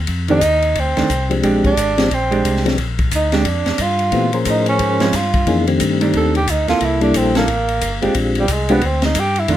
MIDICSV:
0, 0, Header, 1, 6, 480
1, 0, Start_track
1, 0, Tempo, 335946
1, 117, Time_signature, 4, 2, 24, 8
1, 13672, End_track
2, 0, Start_track
2, 0, Title_t, "Tenor saxophone"
2, 0, Program_c, 0, 66
2, 451, Note_on_c, 0, 63, 113
2, 1136, Note_on_c, 0, 60, 89
2, 1158, Note_off_c, 0, 63, 0
2, 1891, Note_off_c, 0, 60, 0
2, 2376, Note_on_c, 0, 62, 105
2, 3062, Note_on_c, 0, 60, 89
2, 3083, Note_off_c, 0, 62, 0
2, 3816, Note_off_c, 0, 60, 0
2, 4510, Note_on_c, 0, 63, 83
2, 4792, Note_on_c, 0, 62, 90
2, 4814, Note_off_c, 0, 63, 0
2, 5461, Note_on_c, 0, 65, 103
2, 5482, Note_off_c, 0, 62, 0
2, 6216, Note_off_c, 0, 65, 0
2, 6425, Note_on_c, 0, 63, 80
2, 6678, Note_off_c, 0, 63, 0
2, 6696, Note_on_c, 0, 61, 94
2, 7375, Note_on_c, 0, 65, 90
2, 7397, Note_off_c, 0, 61, 0
2, 8131, Note_off_c, 0, 65, 0
2, 8817, Note_on_c, 0, 69, 94
2, 9072, Note_off_c, 0, 69, 0
2, 9095, Note_on_c, 0, 67, 89
2, 9291, Note_on_c, 0, 63, 81
2, 9313, Note_off_c, 0, 67, 0
2, 9559, Note_off_c, 0, 63, 0
2, 9567, Note_on_c, 0, 65, 104
2, 9779, Note_on_c, 0, 64, 86
2, 9801, Note_off_c, 0, 65, 0
2, 10038, Note_off_c, 0, 64, 0
2, 10047, Note_on_c, 0, 62, 92
2, 10244, Note_on_c, 0, 60, 82
2, 10266, Note_off_c, 0, 62, 0
2, 10522, Note_off_c, 0, 60, 0
2, 10543, Note_on_c, 0, 58, 93
2, 11606, Note_off_c, 0, 58, 0
2, 11981, Note_on_c, 0, 55, 92
2, 12181, Note_on_c, 0, 56, 77
2, 12203, Note_off_c, 0, 55, 0
2, 12465, Note_on_c, 0, 59, 90
2, 12487, Note_off_c, 0, 56, 0
2, 12654, Note_on_c, 0, 60, 81
2, 12675, Note_off_c, 0, 59, 0
2, 12923, Note_off_c, 0, 60, 0
2, 12936, Note_on_c, 0, 63, 89
2, 13141, Note_on_c, 0, 67, 101
2, 13162, Note_off_c, 0, 63, 0
2, 13425, Note_on_c, 0, 64, 89
2, 13447, Note_off_c, 0, 67, 0
2, 13615, Note_on_c, 0, 65, 91
2, 13637, Note_off_c, 0, 64, 0
2, 13672, Note_off_c, 0, 65, 0
2, 13672, End_track
3, 0, Start_track
3, 0, Title_t, "Hollow-body jazz guitar"
3, 0, Program_c, 1, 26
3, 408, Note_on_c, 1, 51, 66
3, 422, Note_on_c, 1, 57, 69
3, 429, Note_on_c, 1, 62, 76
3, 578, Note_off_c, 1, 51, 0
3, 585, Note_off_c, 1, 57, 0
3, 589, Note_off_c, 1, 62, 0
3, 1384, Note_on_c, 1, 51, 66
3, 1390, Note_on_c, 1, 57, 70
3, 1398, Note_on_c, 1, 62, 74
3, 1549, Note_off_c, 1, 51, 0
3, 1551, Note_off_c, 1, 57, 0
3, 1555, Note_off_c, 1, 62, 0
3, 2047, Note_on_c, 1, 56, 61
3, 2055, Note_on_c, 1, 62, 65
3, 2061, Note_on_c, 1, 67, 70
3, 2768, Note_off_c, 1, 56, 0
3, 2772, Note_off_c, 1, 62, 0
3, 2775, Note_off_c, 1, 67, 0
3, 3300, Note_on_c, 1, 56, 62
3, 3307, Note_on_c, 1, 62, 70
3, 3316, Note_on_c, 1, 67, 81
3, 3933, Note_off_c, 1, 56, 0
3, 3937, Note_off_c, 1, 62, 0
3, 3941, Note_off_c, 1, 67, 0
3, 4753, Note_on_c, 1, 56, 64
3, 4760, Note_on_c, 1, 62, 71
3, 4769, Note_on_c, 1, 67, 78
3, 4918, Note_off_c, 1, 56, 0
3, 4922, Note_off_c, 1, 62, 0
3, 4926, Note_off_c, 1, 67, 0
3, 7147, Note_on_c, 1, 53, 77
3, 7157, Note_on_c, 1, 56, 77
3, 7168, Note_on_c, 1, 61, 85
3, 7314, Note_off_c, 1, 53, 0
3, 7319, Note_off_c, 1, 56, 0
3, 7325, Note_off_c, 1, 61, 0
3, 8588, Note_on_c, 1, 51, 59
3, 8598, Note_on_c, 1, 57, 69
3, 8605, Note_on_c, 1, 62, 75
3, 9214, Note_off_c, 1, 51, 0
3, 9219, Note_off_c, 1, 57, 0
3, 9222, Note_off_c, 1, 62, 0
3, 9545, Note_on_c, 1, 58, 63
3, 9560, Note_on_c, 1, 64, 69
3, 9565, Note_on_c, 1, 69, 78
3, 10171, Note_off_c, 1, 58, 0
3, 10178, Note_off_c, 1, 64, 0
3, 10180, Note_off_c, 1, 69, 0
3, 10511, Note_on_c, 1, 58, 72
3, 10520, Note_on_c, 1, 64, 67
3, 10524, Note_on_c, 1, 69, 81
3, 10672, Note_off_c, 1, 58, 0
3, 10676, Note_off_c, 1, 64, 0
3, 10678, Note_off_c, 1, 69, 0
3, 11459, Note_on_c, 1, 56, 66
3, 11468, Note_on_c, 1, 62, 71
3, 11479, Note_on_c, 1, 67, 69
3, 11624, Note_off_c, 1, 56, 0
3, 11629, Note_off_c, 1, 62, 0
3, 11634, Note_off_c, 1, 67, 0
3, 12423, Note_on_c, 1, 56, 67
3, 12437, Note_on_c, 1, 62, 76
3, 12439, Note_on_c, 1, 67, 70
3, 12585, Note_off_c, 1, 56, 0
3, 12592, Note_off_c, 1, 62, 0
3, 12593, Note_off_c, 1, 67, 0
3, 13554, Note_on_c, 1, 51, 62
3, 13561, Note_on_c, 1, 57, 72
3, 13572, Note_on_c, 1, 62, 72
3, 13672, Note_off_c, 1, 51, 0
3, 13672, Note_off_c, 1, 57, 0
3, 13672, Note_off_c, 1, 62, 0
3, 13672, End_track
4, 0, Start_track
4, 0, Title_t, "Tonewheel organ"
4, 0, Program_c, 2, 16
4, 424, Note_on_c, 2, 51, 70
4, 429, Note_on_c, 2, 57, 64
4, 432, Note_on_c, 2, 60, 70
4, 433, Note_on_c, 2, 62, 68
4, 441, Note_on_c, 2, 67, 85
4, 586, Note_off_c, 2, 51, 0
4, 588, Note_off_c, 2, 57, 0
4, 590, Note_off_c, 2, 60, 0
4, 590, Note_off_c, 2, 62, 0
4, 594, Note_off_c, 2, 67, 0
4, 1851, Note_on_c, 2, 53, 70
4, 1862, Note_on_c, 2, 60, 68
4, 1863, Note_on_c, 2, 56, 65
4, 1863, Note_on_c, 2, 62, 64
4, 1868, Note_on_c, 2, 67, 79
4, 2487, Note_off_c, 2, 53, 0
4, 2492, Note_off_c, 2, 60, 0
4, 2493, Note_off_c, 2, 56, 0
4, 2493, Note_off_c, 2, 62, 0
4, 2495, Note_off_c, 2, 67, 0
4, 2821, Note_on_c, 2, 53, 69
4, 2821, Note_on_c, 2, 56, 63
4, 2823, Note_on_c, 2, 60, 64
4, 2831, Note_on_c, 2, 62, 64
4, 2832, Note_on_c, 2, 67, 76
4, 2990, Note_off_c, 2, 53, 0
4, 2990, Note_off_c, 2, 56, 0
4, 2991, Note_off_c, 2, 60, 0
4, 2995, Note_off_c, 2, 62, 0
4, 2995, Note_off_c, 2, 67, 0
4, 3787, Note_on_c, 2, 53, 72
4, 3791, Note_on_c, 2, 56, 61
4, 3792, Note_on_c, 2, 60, 63
4, 3799, Note_on_c, 2, 62, 62
4, 3801, Note_on_c, 2, 67, 78
4, 3954, Note_off_c, 2, 53, 0
4, 3956, Note_off_c, 2, 56, 0
4, 3957, Note_off_c, 2, 60, 0
4, 3960, Note_off_c, 2, 62, 0
4, 3961, Note_off_c, 2, 67, 0
4, 5887, Note_on_c, 2, 52, 61
4, 5890, Note_on_c, 2, 57, 53
4, 5895, Note_on_c, 2, 59, 57
4, 5896, Note_on_c, 2, 60, 60
4, 5900, Note_on_c, 2, 67, 66
4, 6159, Note_off_c, 2, 52, 0
4, 6160, Note_off_c, 2, 57, 0
4, 6163, Note_off_c, 2, 59, 0
4, 6164, Note_off_c, 2, 60, 0
4, 6165, Note_off_c, 2, 67, 0
4, 6195, Note_on_c, 2, 53, 65
4, 6199, Note_on_c, 2, 72, 59
4, 6200, Note_on_c, 2, 70, 61
4, 6204, Note_on_c, 2, 61, 57
4, 6210, Note_on_c, 2, 68, 68
4, 7227, Note_off_c, 2, 53, 0
4, 7229, Note_off_c, 2, 70, 0
4, 7229, Note_off_c, 2, 72, 0
4, 7231, Note_off_c, 2, 61, 0
4, 7234, Note_off_c, 2, 68, 0
4, 7814, Note_on_c, 2, 52, 71
4, 7820, Note_on_c, 2, 58, 68
4, 7823, Note_on_c, 2, 61, 68
4, 7828, Note_on_c, 2, 63, 68
4, 7831, Note_on_c, 2, 68, 77
4, 8081, Note_off_c, 2, 52, 0
4, 8084, Note_off_c, 2, 58, 0
4, 8085, Note_off_c, 2, 61, 0
4, 8088, Note_off_c, 2, 63, 0
4, 8090, Note_off_c, 2, 68, 0
4, 8113, Note_on_c, 2, 51, 67
4, 8114, Note_on_c, 2, 57, 66
4, 8115, Note_on_c, 2, 60, 65
4, 8122, Note_on_c, 2, 62, 62
4, 8124, Note_on_c, 2, 67, 82
4, 9142, Note_off_c, 2, 51, 0
4, 9143, Note_off_c, 2, 57, 0
4, 9143, Note_off_c, 2, 60, 0
4, 9147, Note_off_c, 2, 62, 0
4, 9148, Note_off_c, 2, 67, 0
4, 10016, Note_on_c, 2, 55, 73
4, 10023, Note_on_c, 2, 58, 62
4, 10023, Note_on_c, 2, 62, 66
4, 10028, Note_on_c, 2, 69, 79
4, 10029, Note_on_c, 2, 64, 66
4, 10645, Note_off_c, 2, 55, 0
4, 10649, Note_off_c, 2, 58, 0
4, 10649, Note_off_c, 2, 62, 0
4, 10651, Note_off_c, 2, 69, 0
4, 10652, Note_off_c, 2, 64, 0
4, 11456, Note_on_c, 2, 56, 79
4, 11460, Note_on_c, 2, 62, 67
4, 11462, Note_on_c, 2, 60, 72
4, 11465, Note_on_c, 2, 65, 67
4, 11467, Note_on_c, 2, 67, 83
4, 12083, Note_off_c, 2, 56, 0
4, 12085, Note_off_c, 2, 62, 0
4, 12086, Note_off_c, 2, 60, 0
4, 12088, Note_off_c, 2, 65, 0
4, 12088, Note_off_c, 2, 67, 0
4, 12424, Note_on_c, 2, 56, 73
4, 12427, Note_on_c, 2, 60, 69
4, 12429, Note_on_c, 2, 62, 69
4, 12434, Note_on_c, 2, 67, 82
4, 12437, Note_on_c, 2, 65, 65
4, 12585, Note_off_c, 2, 56, 0
4, 12587, Note_off_c, 2, 60, 0
4, 12588, Note_off_c, 2, 62, 0
4, 12591, Note_off_c, 2, 67, 0
4, 12592, Note_off_c, 2, 65, 0
4, 13672, End_track
5, 0, Start_track
5, 0, Title_t, "Tonewheel organ"
5, 0, Program_c, 3, 16
5, 110, Note_on_c, 3, 41, 82
5, 582, Note_off_c, 3, 41, 0
5, 598, Note_on_c, 3, 39, 86
5, 1067, Note_off_c, 3, 39, 0
5, 1088, Note_on_c, 3, 38, 83
5, 1363, Note_off_c, 3, 38, 0
5, 1388, Note_on_c, 3, 38, 37
5, 1478, Note_off_c, 3, 38, 0
5, 1571, Note_on_c, 3, 36, 88
5, 2036, Note_off_c, 3, 36, 0
5, 2054, Note_on_c, 3, 34, 84
5, 2329, Note_off_c, 3, 34, 0
5, 2350, Note_on_c, 3, 34, 39
5, 2441, Note_off_c, 3, 34, 0
5, 2535, Note_on_c, 3, 32, 82
5, 3000, Note_off_c, 3, 32, 0
5, 3017, Note_on_c, 3, 34, 83
5, 3481, Note_off_c, 3, 34, 0
5, 3501, Note_on_c, 3, 36, 89
5, 3964, Note_off_c, 3, 36, 0
5, 3973, Note_on_c, 3, 34, 83
5, 4440, Note_off_c, 3, 34, 0
5, 4454, Note_on_c, 3, 38, 81
5, 4921, Note_off_c, 3, 38, 0
5, 4938, Note_on_c, 3, 41, 90
5, 5211, Note_off_c, 3, 41, 0
5, 5228, Note_on_c, 3, 41, 36
5, 5321, Note_off_c, 3, 41, 0
5, 5417, Note_on_c, 3, 43, 87
5, 5883, Note_off_c, 3, 43, 0
5, 5892, Note_on_c, 3, 46, 84
5, 6360, Note_off_c, 3, 46, 0
5, 6374, Note_on_c, 3, 45, 88
5, 6841, Note_off_c, 3, 45, 0
5, 6852, Note_on_c, 3, 44, 91
5, 7319, Note_off_c, 3, 44, 0
5, 7332, Note_on_c, 3, 43, 92
5, 7799, Note_off_c, 3, 43, 0
5, 7815, Note_on_c, 3, 41, 82
5, 8279, Note_off_c, 3, 41, 0
5, 8296, Note_on_c, 3, 43, 82
5, 8759, Note_off_c, 3, 43, 0
5, 8775, Note_on_c, 3, 39, 85
5, 9238, Note_off_c, 3, 39, 0
5, 9256, Note_on_c, 3, 38, 97
5, 9527, Note_off_c, 3, 38, 0
5, 9544, Note_on_c, 3, 38, 40
5, 9636, Note_off_c, 3, 38, 0
5, 9731, Note_on_c, 3, 36, 78
5, 10195, Note_off_c, 3, 36, 0
5, 10209, Note_on_c, 3, 34, 89
5, 10673, Note_off_c, 3, 34, 0
5, 10693, Note_on_c, 3, 33, 82
5, 11154, Note_off_c, 3, 33, 0
5, 11167, Note_on_c, 3, 31, 98
5, 11441, Note_off_c, 3, 31, 0
5, 11468, Note_on_c, 3, 31, 41
5, 11557, Note_off_c, 3, 31, 0
5, 11642, Note_on_c, 3, 34, 92
5, 12107, Note_off_c, 3, 34, 0
5, 12127, Note_on_c, 3, 36, 85
5, 12589, Note_off_c, 3, 36, 0
5, 12598, Note_on_c, 3, 38, 93
5, 13064, Note_off_c, 3, 38, 0
5, 13076, Note_on_c, 3, 43, 95
5, 13542, Note_off_c, 3, 43, 0
5, 13557, Note_on_c, 3, 41, 92
5, 13672, Note_off_c, 3, 41, 0
5, 13672, End_track
6, 0, Start_track
6, 0, Title_t, "Drums"
6, 101, Note_on_c, 9, 51, 64
6, 114, Note_on_c, 9, 36, 19
6, 244, Note_off_c, 9, 51, 0
6, 257, Note_off_c, 9, 36, 0
6, 403, Note_on_c, 9, 51, 48
6, 546, Note_off_c, 9, 51, 0
6, 589, Note_on_c, 9, 44, 67
6, 589, Note_on_c, 9, 51, 76
6, 599, Note_on_c, 9, 36, 27
6, 732, Note_off_c, 9, 44, 0
6, 732, Note_off_c, 9, 51, 0
6, 741, Note_off_c, 9, 36, 0
6, 891, Note_on_c, 9, 51, 50
6, 1034, Note_off_c, 9, 51, 0
6, 1077, Note_on_c, 9, 51, 65
6, 1085, Note_on_c, 9, 36, 21
6, 1220, Note_off_c, 9, 51, 0
6, 1228, Note_off_c, 9, 36, 0
6, 1382, Note_on_c, 9, 51, 46
6, 1389, Note_on_c, 9, 38, 40
6, 1525, Note_off_c, 9, 51, 0
6, 1532, Note_off_c, 9, 38, 0
6, 1567, Note_on_c, 9, 44, 55
6, 1567, Note_on_c, 9, 51, 66
6, 1569, Note_on_c, 9, 36, 22
6, 1710, Note_off_c, 9, 44, 0
6, 1710, Note_off_c, 9, 51, 0
6, 1712, Note_off_c, 9, 36, 0
6, 1868, Note_on_c, 9, 51, 49
6, 2011, Note_off_c, 9, 51, 0
6, 2048, Note_on_c, 9, 51, 61
6, 2051, Note_on_c, 9, 36, 21
6, 2191, Note_off_c, 9, 51, 0
6, 2194, Note_off_c, 9, 36, 0
6, 2348, Note_on_c, 9, 51, 44
6, 2350, Note_on_c, 9, 36, 49
6, 2491, Note_off_c, 9, 51, 0
6, 2493, Note_off_c, 9, 36, 0
6, 2532, Note_on_c, 9, 44, 63
6, 2532, Note_on_c, 9, 51, 76
6, 2533, Note_on_c, 9, 36, 21
6, 2675, Note_off_c, 9, 44, 0
6, 2675, Note_off_c, 9, 51, 0
6, 2676, Note_off_c, 9, 36, 0
6, 2828, Note_on_c, 9, 51, 52
6, 2835, Note_on_c, 9, 38, 61
6, 2971, Note_off_c, 9, 51, 0
6, 2978, Note_off_c, 9, 38, 0
6, 3015, Note_on_c, 9, 36, 20
6, 3017, Note_on_c, 9, 51, 65
6, 3158, Note_off_c, 9, 36, 0
6, 3160, Note_off_c, 9, 51, 0
6, 3315, Note_on_c, 9, 51, 45
6, 3458, Note_off_c, 9, 51, 0
6, 3499, Note_on_c, 9, 36, 22
6, 3499, Note_on_c, 9, 44, 49
6, 3499, Note_on_c, 9, 51, 70
6, 3641, Note_off_c, 9, 36, 0
6, 3642, Note_off_c, 9, 44, 0
6, 3642, Note_off_c, 9, 51, 0
6, 3667, Note_on_c, 9, 38, 31
6, 3799, Note_on_c, 9, 51, 49
6, 3810, Note_off_c, 9, 38, 0
6, 3827, Note_on_c, 9, 38, 47
6, 3942, Note_off_c, 9, 51, 0
6, 3970, Note_off_c, 9, 38, 0
6, 3970, Note_on_c, 9, 51, 66
6, 3977, Note_on_c, 9, 36, 27
6, 4113, Note_off_c, 9, 51, 0
6, 4120, Note_off_c, 9, 36, 0
6, 4266, Note_on_c, 9, 51, 51
6, 4272, Note_on_c, 9, 36, 53
6, 4409, Note_off_c, 9, 51, 0
6, 4415, Note_off_c, 9, 36, 0
6, 4448, Note_on_c, 9, 44, 67
6, 4448, Note_on_c, 9, 51, 75
6, 4454, Note_on_c, 9, 36, 24
6, 4591, Note_off_c, 9, 44, 0
6, 4591, Note_off_c, 9, 51, 0
6, 4597, Note_off_c, 9, 36, 0
6, 4744, Note_on_c, 9, 51, 54
6, 4751, Note_on_c, 9, 38, 55
6, 4887, Note_off_c, 9, 51, 0
6, 4894, Note_off_c, 9, 38, 0
6, 4928, Note_on_c, 9, 51, 70
6, 4933, Note_on_c, 9, 36, 22
6, 5071, Note_off_c, 9, 51, 0
6, 5076, Note_off_c, 9, 36, 0
6, 5227, Note_on_c, 9, 51, 46
6, 5234, Note_on_c, 9, 38, 48
6, 5370, Note_off_c, 9, 51, 0
6, 5377, Note_off_c, 9, 38, 0
6, 5400, Note_on_c, 9, 44, 55
6, 5400, Note_on_c, 9, 51, 78
6, 5412, Note_on_c, 9, 36, 22
6, 5543, Note_off_c, 9, 44, 0
6, 5543, Note_off_c, 9, 51, 0
6, 5555, Note_off_c, 9, 36, 0
6, 5700, Note_on_c, 9, 51, 46
6, 5843, Note_off_c, 9, 51, 0
6, 5885, Note_on_c, 9, 51, 59
6, 5891, Note_on_c, 9, 36, 23
6, 6027, Note_off_c, 9, 51, 0
6, 6034, Note_off_c, 9, 36, 0
6, 6184, Note_on_c, 9, 51, 52
6, 6327, Note_off_c, 9, 51, 0
6, 6362, Note_on_c, 9, 44, 55
6, 6362, Note_on_c, 9, 51, 77
6, 6371, Note_on_c, 9, 36, 24
6, 6505, Note_off_c, 9, 44, 0
6, 6505, Note_off_c, 9, 51, 0
6, 6514, Note_off_c, 9, 36, 0
6, 6659, Note_on_c, 9, 51, 53
6, 6802, Note_off_c, 9, 51, 0
6, 6846, Note_on_c, 9, 51, 68
6, 6852, Note_on_c, 9, 36, 25
6, 6989, Note_off_c, 9, 51, 0
6, 6995, Note_off_c, 9, 36, 0
6, 7147, Note_on_c, 9, 51, 50
6, 7154, Note_on_c, 9, 38, 57
6, 7289, Note_off_c, 9, 51, 0
6, 7297, Note_off_c, 9, 38, 0
6, 7329, Note_on_c, 9, 44, 54
6, 7329, Note_on_c, 9, 51, 80
6, 7335, Note_on_c, 9, 36, 21
6, 7336, Note_on_c, 9, 38, 38
6, 7472, Note_off_c, 9, 44, 0
6, 7472, Note_off_c, 9, 51, 0
6, 7478, Note_off_c, 9, 36, 0
6, 7479, Note_off_c, 9, 38, 0
6, 7624, Note_on_c, 9, 51, 51
6, 7631, Note_on_c, 9, 36, 57
6, 7767, Note_off_c, 9, 51, 0
6, 7774, Note_off_c, 9, 36, 0
6, 7811, Note_on_c, 9, 51, 63
6, 7815, Note_on_c, 9, 36, 24
6, 7954, Note_off_c, 9, 51, 0
6, 7958, Note_off_c, 9, 36, 0
6, 8107, Note_on_c, 9, 51, 48
6, 8250, Note_off_c, 9, 51, 0
6, 8284, Note_on_c, 9, 44, 60
6, 8284, Note_on_c, 9, 51, 78
6, 8294, Note_on_c, 9, 36, 22
6, 8427, Note_off_c, 9, 44, 0
6, 8427, Note_off_c, 9, 51, 0
6, 8436, Note_off_c, 9, 36, 0
6, 8586, Note_on_c, 9, 51, 58
6, 8729, Note_off_c, 9, 51, 0
6, 8765, Note_on_c, 9, 51, 59
6, 8774, Note_on_c, 9, 36, 22
6, 8908, Note_off_c, 9, 51, 0
6, 8917, Note_off_c, 9, 36, 0
6, 9071, Note_on_c, 9, 51, 48
6, 9214, Note_off_c, 9, 51, 0
6, 9251, Note_on_c, 9, 44, 67
6, 9251, Note_on_c, 9, 51, 77
6, 9255, Note_on_c, 9, 36, 22
6, 9394, Note_off_c, 9, 44, 0
6, 9394, Note_off_c, 9, 51, 0
6, 9398, Note_off_c, 9, 36, 0
6, 9548, Note_on_c, 9, 51, 51
6, 9555, Note_on_c, 9, 38, 41
6, 9691, Note_off_c, 9, 51, 0
6, 9698, Note_off_c, 9, 38, 0
6, 9723, Note_on_c, 9, 51, 66
6, 9732, Note_on_c, 9, 36, 21
6, 9866, Note_off_c, 9, 51, 0
6, 9875, Note_off_c, 9, 36, 0
6, 10018, Note_on_c, 9, 51, 48
6, 10161, Note_off_c, 9, 51, 0
6, 10204, Note_on_c, 9, 44, 65
6, 10204, Note_on_c, 9, 51, 79
6, 10211, Note_on_c, 9, 36, 23
6, 10347, Note_off_c, 9, 44, 0
6, 10347, Note_off_c, 9, 51, 0
6, 10354, Note_off_c, 9, 36, 0
6, 10502, Note_on_c, 9, 51, 53
6, 10509, Note_on_c, 9, 38, 64
6, 10645, Note_off_c, 9, 51, 0
6, 10652, Note_off_c, 9, 38, 0
6, 10684, Note_on_c, 9, 51, 66
6, 10689, Note_on_c, 9, 36, 21
6, 10827, Note_off_c, 9, 51, 0
6, 10832, Note_off_c, 9, 36, 0
6, 10980, Note_on_c, 9, 51, 49
6, 11123, Note_off_c, 9, 51, 0
6, 11164, Note_on_c, 9, 44, 67
6, 11164, Note_on_c, 9, 51, 73
6, 11169, Note_on_c, 9, 36, 25
6, 11307, Note_off_c, 9, 44, 0
6, 11307, Note_off_c, 9, 51, 0
6, 11311, Note_off_c, 9, 36, 0
6, 11463, Note_on_c, 9, 51, 49
6, 11606, Note_off_c, 9, 51, 0
6, 11638, Note_on_c, 9, 51, 69
6, 11647, Note_on_c, 9, 36, 25
6, 11781, Note_off_c, 9, 51, 0
6, 11790, Note_off_c, 9, 36, 0
6, 11933, Note_on_c, 9, 51, 51
6, 12076, Note_off_c, 9, 51, 0
6, 12117, Note_on_c, 9, 44, 59
6, 12117, Note_on_c, 9, 51, 79
6, 12124, Note_on_c, 9, 36, 28
6, 12259, Note_off_c, 9, 44, 0
6, 12259, Note_off_c, 9, 51, 0
6, 12267, Note_off_c, 9, 36, 0
6, 12411, Note_on_c, 9, 51, 55
6, 12554, Note_off_c, 9, 51, 0
6, 12593, Note_on_c, 9, 51, 66
6, 12602, Note_on_c, 9, 36, 20
6, 12736, Note_off_c, 9, 51, 0
6, 12745, Note_off_c, 9, 36, 0
6, 12887, Note_on_c, 9, 51, 49
6, 12894, Note_on_c, 9, 38, 60
6, 13030, Note_off_c, 9, 51, 0
6, 13037, Note_off_c, 9, 38, 0
6, 13070, Note_on_c, 9, 44, 64
6, 13070, Note_on_c, 9, 51, 78
6, 13080, Note_on_c, 9, 36, 23
6, 13213, Note_off_c, 9, 44, 0
6, 13213, Note_off_c, 9, 51, 0
6, 13223, Note_off_c, 9, 36, 0
6, 13370, Note_on_c, 9, 51, 49
6, 13513, Note_off_c, 9, 51, 0
6, 13548, Note_on_c, 9, 51, 70
6, 13558, Note_on_c, 9, 36, 20
6, 13672, Note_off_c, 9, 36, 0
6, 13672, Note_off_c, 9, 51, 0
6, 13672, End_track
0, 0, End_of_file